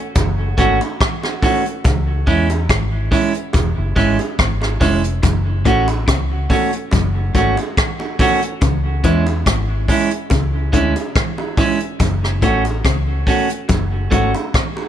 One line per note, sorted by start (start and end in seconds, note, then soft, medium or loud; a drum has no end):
0.15 0.54 F#1 medium
0.15 kick loud
0.15 closed hi-hat medium
0.15 high bongo medium
0.57 0.79 G#1 medium
0.57 0.78 A3 medium
0.57 0.78 C#4 medium
0.57 0.79 F#4 loud
0.57 kick medium
0.57 closed hi-hat medium
0.81 closed hi-hat soft
0.81 high bongo medium
1.00 kick loud
1.00 cross-stick loud
1.00 closed hi-hat medium
1.23 muted clean electric guitar stroke soft
1.23 cross-stick medium
1.23 high bongo medium
1.42 1.63 A3 medium
1.42 1.63 C#4 medium
1.42 1.63 F#4 medium
1.42 kick medium
1.42 open hi-hat medium
1.42 low bongo medium
1.66 closed hi-hat soft
1.84 2.24 C#2 loud
1.84 kick loud
1.84 closed hi-hat loud
1.84 high bongo medium
2.27 2.66 E2 medium
2.27 2.47 G#3 medium
2.27 2.47 C#4 medium
2.27 2.48 E4 medium
2.27 kick medium
2.27 open hi-hat soft
2.50 closed hi-hat soft
2.50 high bongo medium
2.69 3.08 G#1 medium
2.69 kick loud
2.69 cross-stick loud
2.69 closed hi-hat medium
3.11 3.32 G#3 medium
3.11 3.32 C#4 medium
3.11 3.32 E4 medium
3.11 kick medium
3.11 open hi-hat medium
3.34 closed hi-hat soft
3.53 3.75 E1 medium
3.53 kick loud
3.53 closed hi-hat loud
3.53 high bongo medium
3.77 3.95 F#1 medium
3.96 4.17 G#1 medium
3.96 4.16 G#3 medium
3.96 4.17 C#4 medium
3.96 4.17 E4 medium
3.96 kick medium
3.96 open hi-hat medium
4.19 closed hi-hat soft
4.19 high bongo medium
4.38 4.78 G#1 medium
4.38 kick loud
4.38 cross-stick loud
4.38 closed hi-hat medium
4.61 muted clean electric guitar stroke soft
4.61 cross-stick medium
4.61 high bongo medium
4.80 5.20 F1 medium
4.80 5.01 G#3 medium
4.80 5.01 C#4 medium
4.80 5.02 E4 medium
4.80 kick medium
4.80 open hi-hat medium
4.80 low bongo medium
5.04 closed hi-hat medium
5.23 5.66 F#1 loud
5.23 5.49 F#2 medium
5.23 kick loud
5.23 closed hi-hat medium
5.23 high bongo medium
5.65 6.04 A1 medium
5.65 5.91 A2 medium
5.65 5.86 A3 medium
5.65 5.86 C#4 medium
5.65 5.86 F#4 medium
5.65 kick medium
5.65 closed hi-hat medium
5.88 closed hi-hat soft
5.88 high bongo medium
6.08 6.47 C#2 medium
6.08 6.33 C#3 medium
6.08 kick loud
6.08 cross-stick loud
6.08 closed hi-hat medium
6.50 6.70 A3 medium
6.50 6.70 C#4 medium
6.50 6.71 F#4 medium
6.50 kick medium
6.50 open hi-hat medium
6.73 closed hi-hat medium
6.91 7.31 F#1 loud
6.91 7.18 F#2 medium
6.91 kick loud
6.91 closed hi-hat medium
6.91 high bongo medium
7.35 7.55 G#1 medium
7.35 7.48 G#2 medium
7.35 7.55 A3 medium
7.35 7.55 C#4 medium
7.35 7.55 F#4 loud
7.35 kick medium
7.35 closed hi-hat medium
7.57 closed hi-hat soft
7.57 high bongo medium
7.77 kick loud
7.77 cross-stick loud
7.77 closed hi-hat medium
7.99 muted clean electric guitar stroke soft
7.99 high bongo medium
8.19 8.39 A3 medium
8.19 8.40 C#4 medium
8.19 8.40 F#4 medium
8.19 kick loud
8.19 open hi-hat medium
8.19 low bongo medium
8.42 closed hi-hat soft
8.61 9.01 C#2 loud
8.61 8.87 C#3 medium
8.61 kick loud
8.61 closed hi-hat loud
8.61 high bongo medium
9.04 9.43 E2 medium
9.04 9.30 E3 medium
9.04 9.24 G#3 medium
9.04 9.25 C#4 medium
9.04 9.25 E4 medium
9.04 kick medium
9.04 closed hi-hat medium
9.26 closed hi-hat soft
9.26 high bongo medium
9.46 9.85 G#1 medium
9.46 9.72 G#2 medium
9.46 kick loud
9.46 cross-stick loud
9.46 closed hi-hat medium
9.88 10.09 G#3 medium
9.88 10.09 C#4 medium
9.88 10.10 E4 medium
9.88 kick medium
9.88 open hi-hat medium
10.11 closed hi-hat medium
10.30 10.70 C#2 medium
10.30 10.57 C#3 medium
10.30 kick loud
10.30 closed hi-hat loud
10.30 high bongo medium
10.72 10.94 D2 medium
10.72 10.87 D3 medium
10.72 10.93 G#3 medium
10.72 10.93 C#4 loud
10.72 10.94 E4 medium
10.72 kick medium
10.72 closed hi-hat medium
10.96 closed hi-hat soft
10.96 high bongo medium
11.15 kick loud
11.15 cross-stick loud
11.15 closed hi-hat medium
11.38 muted clean electric guitar stroke soft
11.38 high bongo medium
11.57 11.78 G#3 medium
11.57 11.78 C#4 medium
11.57 11.79 E4 medium
11.57 kick loud
11.57 open hi-hat medium
11.57 low bongo medium
11.80 closed hi-hat medium
12.00 12.43 F#1 loud
12.00 12.26 F#2 medium
12.00 kick loud
12.00 closed hi-hat loud
12.00 high bongo medium
12.24 cross-stick medium
12.42 12.81 A1 loud
12.42 12.68 A2 medium
12.42 12.63 A3 medium
12.42 12.63 C#4 medium
12.42 12.63 F#4 medium
12.42 kick medium
12.42 closed hi-hat medium
12.65 closed hi-hat soft
12.65 high bongo medium
12.85 13.24 C#2 medium
12.85 13.10 C#3 medium
12.85 kick loud
12.85 cross-stick loud
12.85 closed hi-hat loud
13.27 13.47 A3 medium
13.27 13.48 C#4 medium
13.27 13.48 F#4 medium
13.27 kick medium
13.27 open hi-hat medium
13.49 closed hi-hat medium
13.69 14.08 F#1 medium
13.69 13.95 F#2 medium
13.69 kick loud
13.69 closed hi-hat medium
13.69 high bongo medium
14.11 14.32 G#1 medium
14.11 14.26 G#2 medium
14.11 14.31 A3 medium
14.11 14.32 C#4 medium
14.11 14.32 F#4 medium
14.11 kick medium
14.11 closed hi-hat medium
14.35 closed hi-hat soft
14.35 high bongo medium
14.54 kick loud
14.54 cross-stick loud
14.54 closed hi-hat medium
14.77 high bongo medium